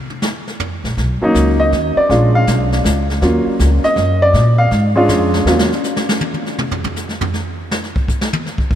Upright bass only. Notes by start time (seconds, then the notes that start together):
0.84 A#1
0.97 B1
1.21 muted upright bass stroke
1.34 C#2
1.72 D#2
1.96 muted upright bass stroke
2.10 A#1
2.47 B1
2.84 C#2
3.21 D#2
3.46 muted upright bass stroke
3.59 C#2
3.96 F#2
4.34 A#2
4.71 G#2
5.08 F2
5.45 D#2